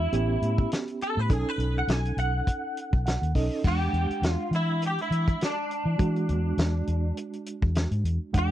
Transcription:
0.00 0.69 E4 medium
0.00 0.10 F#4 medium
0.13 0.35 A1 loud
0.13 1.28 B3 medium
0.13 1.28 C#4 medium
0.13 1.28 G4 medium
0.13 closed hi-hat medium
0.42 0.65 A2 medium
0.42 closed hi-hat medium
0.58 kick medium
0.72 snare medium
0.72 closed hi-hat medium
0.88 closed hi-hat soft
1.01 1.19 A4 medium
1.01 closed hi-hat medium
1.17 1.31 A2 medium
1.17 1.32 B4 medium
1.30 1.43 B1 medium
1.30 3.31 C#4 medium
1.30 3.31 D#4 soft
1.30 1.49 G#4 medium
1.30 3.31 A4 medium
1.30 kick loud
1.30 closed hi-hat medium
1.49 1.76 B4 medium
1.58 1.81 B1 loud
1.58 closed hi-hat medium
1.78 1.91 F#5 medium
1.88 2.11 B1 medium
1.88 2.18 G#5 medium
1.88 snare loud
1.88 closed hi-hat medium
2.05 closed hi-hat soft
2.17 2.40 B1 medium
2.17 3.61 F#5 medium
2.17 closed hi-hat medium
2.47 kick medium
2.47 closed hi-hat medium
2.77 closed hi-hat medium
2.93 3.16 B1 medium
2.93 kick medium
3.06 3.33 F#5 medium
3.06 snare medium
3.06 closed hi-hat medium
3.22 3.32 D#2 medium
3.22 closed hi-hat soft
3.35 3.48 B1 medium
3.35 3.65 C#4 medium
3.35 3.65 D#4 soft
3.35 3.65 A4 medium
3.35 3.63 D#5 medium
3.35 kick medium
3.35 open hi-hat medium
3.64 3.87 E2 loud
3.64 5.95 G#3 medium
3.64 5.95 D4 soft
3.64 4.30 G4 medium
3.64 5.95 F#5 medium
3.64 kick loud
3.64 crash medium
3.93 4.06 E2 medium
3.93 closed hi-hat soft
4.10 muted fingered electric bass stroke soft
4.10 closed hi-hat soft
4.22 4.35 E2 medium
4.22 snare loud
4.22 closed hi-hat medium
4.30 4.51 F4 medium
4.51 4.97 E3 medium
4.51 4.82 E4 medium
4.51 closed hi-hat medium
4.82 closed hi-hat medium
4.86 5.00 G4 medium
4.98 5.41 E4 medium
4.98 closed hi-hat soft
5.11 5.34 E3 medium
5.11 closed hi-hat medium
5.28 kick medium
5.28 closed hi-hat soft
5.41 7.15 D4 medium
5.41 snare medium
5.41 closed hi-hat medium
5.71 closed hi-hat medium
5.86 5.96 E3 medium
5.98 6.31 E3 medium
5.98 8.29 G#3 medium
5.98 8.30 D4 medium
5.98 8.30 F#4 medium
5.98 kick loud
5.98 closed hi-hat medium
6.16 closed hi-hat soft
6.29 6.52 E2 loud
6.29 closed hi-hat medium
6.57 6.81 E2 loud
6.57 snare loud
6.57 closed hi-hat medium
6.87 7.10 E2 medium
6.87 closed hi-hat medium
7.17 closed hi-hat medium
7.33 closed hi-hat soft
7.46 closed hi-hat medium
7.62 7.85 E2 medium
7.62 kick medium
7.75 snare loud
7.75 closed hi-hat medium
7.91 8.02 G#2 medium
7.91 closed hi-hat soft
8.04 8.17 E2 medium
8.04 closed hi-hat medium
8.33 8.51 E2 medium
8.33 8.51 G#3 medium
8.33 8.51 D4 medium
8.33 8.51 F#5 medium
8.33 kick loud
8.33 closed hi-hat medium
8.38 8.51 G4 medium

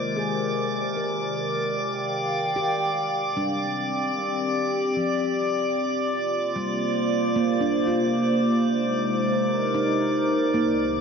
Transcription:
0.00 3.35 C3 medium
0.00 4.31 D#3 medium
0.00 0.95 G#3 medium
0.00 4.31 A#4 medium
0.00 1.91 C5 medium
0.00 11.01 D5 medium
0.00 11.01 D6 medium
0.16 1.17 G#4 medium
0.96 1.97 A#4 soft
1.64 4.31 F5 medium
1.64 4.29 G5 medium
2.56 3.57 G4 medium
3.35 4.37 G3 medium
3.35 6.71 C4 medium
3.35 4.37 D4 medium
3.65 8.96 D5 medium
3.87 6.71 G4 medium
4.96 5.97 F3 soft
5.78 10.57 C3 medium
6.02 8.90 F4 medium
6.19 9.06 A#3 medium
6.30 11.01 C5 medium
6.56 7.57 G3 medium
7.36 8.37 A#3 medium
7.61 8.59 D4 soft
7.87 8.82 F4 soft
8.62 10.55 G#3 medium
8.68 11.01 D#4 medium
9.16 11.01 A#4 medium
9.74 10.76 D#4 soft
10.54 11.01 C2 medium
10.54 11.01 A#3 medium
10.68 11.01 D#3 medium

